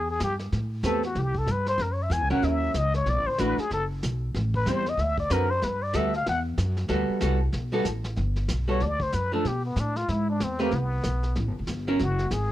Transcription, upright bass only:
Already playing: E2
0.20 G2
0.52 A2
0.83 E2
1.15 C2
1.46 G2
1.78 F#2
2.10 E2
2.21 C#2
2.31 A#1
2.42 D#2
2.74 C#2
3.06 B1
3.17 A1
3.28 F#1
3.39 A1
3.58 muted upright bass stroke
3.71 F#1
4.03 B1
4.35 A1
4.66 E2
4.97 D2
5.30 F#2
5.64 G2
5.94 D2
6.27 E2
6.58 F#2
6.89 D2
7.09 muted upright bass stroke
7.22 C2
7.54 B1
7.85 A1
8.17 G1
8.50 B1
8.81 D2
9.13 F#2
9.45 B2
9.76 A2
10.09 G#2
10.40 E2
10.71 C2
11.05 B1
11.36 A1
11.47 G1
11.59 E1
11.68 G1
12.00 F#1
12.31 G#1

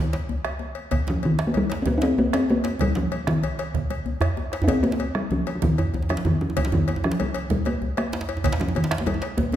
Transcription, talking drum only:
0.00 D#3
1.10 F3
1.25 D#3
1.47 A#3
1.57 G3
1.82 C4
1.87 A#3
1.98 D#4
2.03 C4
2.19 A#3
2.34 C4
2.50 A#3
2.82 G3
2.97 F3
3.27 D#3
4.64 D#4
4.68 C4
4.83 A#3
5.15 G3
5.32 F3
5.55 F3
5.64 D#3
6.11 F3
6.26 D#3
6.41 F3
6.66 F3
6.74 D#3
7.05 F3
7.20 G3
7.51 G3
7.67 A#3
7.98 A#3
8.61 F3
8.77 D#3
9.01 A#3
9.07 G3
9.37 A#3

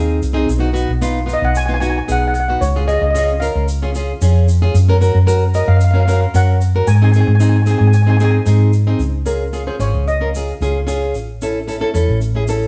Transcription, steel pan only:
1.33 D#5
1.45 F#5
1.57 G#5
1.66 G#5
1.74 G#5
1.80 G#5
1.90 G#5
1.98 G#5
2.12 F#5
2.19 F#5
2.28 F#5
2.34 F#5
2.40 F#5
2.48 F#5
2.61 C#5
2.88 D#5
2.93 D#5
3.02 D#5
3.11 D#5
3.18 D#5
3.23 D#5
3.40 F5
5.55 D#5
5.68 F5
5.77 F5
5.84 F5
5.91 F5
6.00 F5
6.06 F5
6.13 F5
6.21 F5
6.36 F#5
6.87 G#5
6.95 G#5
7.04 G#5
7.12 G#5
7.21 G#5
7.27 G#5
7.35 G#5
7.42 G#5
7.49 G#5
7.56 G#5
7.62 G#5
7.71 G#5
7.78 G#5
7.87 G#5
7.94 G#5
8.02 G#5
8.10 G#5
8.17 G#5
8.24 G#5
8.31 G#5
9.26 A#4
9.67 C5
9.80 C#5
10.08 D#5
12.50 A4

